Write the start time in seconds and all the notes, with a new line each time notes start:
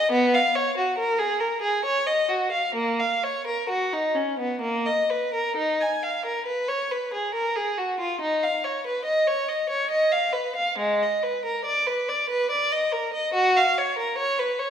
Already playing: D#5
0.11 B3
0.34 F5
0.56 C#5
0.77 F#4
0.98 A#4
1.19 G#4
1.40 A#4
1.62 G#4
1.85 C#5
2.07 D#5
2.29 F#4
2.51 F5
2.75 A#3
3.00 F5
3.23 C#5
3.47 A#4
3.69 F#4
3.93 D#4
4.15 C#4
4.39 B3
4.61 A#3
4.86 D#5
5.10 B4
5.34 A#4
5.56 D#4
5.81 G#5
6.03 F5
6.26 A#4
6.46 B4
6.68 C#5
6.91 B4
7.13 G#4
7.34 A#4
7.56 G#4
7.77 F#4
8.00 F4
8.21 D#4
8.43 F5
8.64 C#5
8.87 B4
9.05 D#5
9.27 C#5
9.48 D#5
9.69 C#5
9.91 D#5
10.12 F5
10.33 B4
10.56 F5
10.78 G#3
11.03 D#5
11.23 B4
11.45 A#4
11.65 D5
11.87 B4
12.09 D5
12.30 B4
12.51 D5
12.72 D#5
12.92 A#4
13.13 D#5
13.33 F#4
13.57 F5
13.78 C#5
13.98 A#4
14.18 C#5
14.39 B4
14.59 C#5